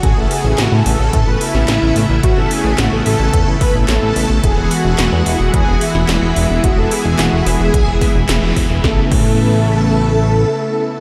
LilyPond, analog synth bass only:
\new Staff \with { instrumentName = "Analog synth bass" } { \clef bass \time 4/4 \key a \major \tempo 4 = 109 a,,16 a,,16 r16 a,,16 a,,16 a,16 a,,16 a,,16 a,16 a,,16 r16 a,,16 a,,16 a,,16 a,,16 a,,16 | a,,16 a,,16 r16 a,,16 a,,16 a,,16 a,,16 a,,16 e,16 a,,16 r16 a,,16 a,,16 a,,16 a,,16 a,,16 | e,,16 e,,16 r16 e,,16 e,,16 e,16 e,,16 e,,16 e,16 e,,16 r16 e,,16 e,,16 e,,16 e,,16 e,,16 | e,,16 e,,16 r16 e,,16 e,,16 e,,16 e,,16 e,,16 b,,16 e,,16 r16 e,,16 e,,16 e,,16 e,,16 e,,16 |
a,,16 r16 a,,2~ a,,8 r4 | }